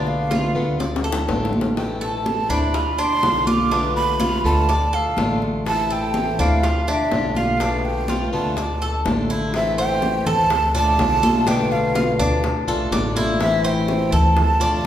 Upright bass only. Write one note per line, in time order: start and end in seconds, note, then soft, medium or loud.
0.00 0.49 B1 medium
0.56 1.25 D2 medium
1.28 2.44 A1 medium
2.50 3.19 D2 medium
3.23 4.38 B1 medium
4.44 5.13 D2 medium
5.17 6.32 A1 medium
6.39 7.08 D2 medium
7.12 8.27 B1 medium
8.33 9.02 D2 medium
9.06 10.20 A1 medium
10.26 10.95 D2 loud
10.99 12.13 B1 medium
12.19 12.64 D2 loud
12.68 12.90 B1 medium
12.91 14.06 A1 medium
14.12 14.81 D2 loud